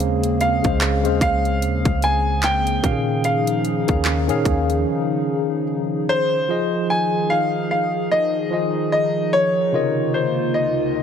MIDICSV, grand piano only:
0, 0, Header, 1, 2, 480
1, 0, Start_track
1, 0, Time_signature, 4, 2, 24, 8
1, 0, Key_signature, -4, "minor"
1, 0, Tempo, 810811
1, 6529, End_track
2, 0, Start_track
2, 0, Title_t, "Grand piano"
2, 0, Program_c, 0, 0
2, 243, Note_on_c, 0, 77, 86
2, 697, Note_off_c, 0, 77, 0
2, 723, Note_on_c, 0, 77, 109
2, 1206, Note_on_c, 0, 80, 100
2, 1215, Note_off_c, 0, 77, 0
2, 1426, Note_off_c, 0, 80, 0
2, 1447, Note_on_c, 0, 79, 98
2, 1899, Note_off_c, 0, 79, 0
2, 1923, Note_on_c, 0, 77, 90
2, 3338, Note_off_c, 0, 77, 0
2, 3607, Note_on_c, 0, 72, 112
2, 4059, Note_off_c, 0, 72, 0
2, 4086, Note_on_c, 0, 80, 99
2, 4321, Note_on_c, 0, 77, 105
2, 4329, Note_off_c, 0, 80, 0
2, 4555, Note_off_c, 0, 77, 0
2, 4564, Note_on_c, 0, 77, 91
2, 4785, Note_off_c, 0, 77, 0
2, 4804, Note_on_c, 0, 75, 98
2, 5274, Note_off_c, 0, 75, 0
2, 5283, Note_on_c, 0, 75, 96
2, 5504, Note_off_c, 0, 75, 0
2, 5523, Note_on_c, 0, 73, 108
2, 6003, Note_on_c, 0, 72, 80
2, 6016, Note_off_c, 0, 73, 0
2, 6225, Note_off_c, 0, 72, 0
2, 6241, Note_on_c, 0, 75, 83
2, 6529, Note_off_c, 0, 75, 0
2, 6529, End_track
0, 0, End_of_file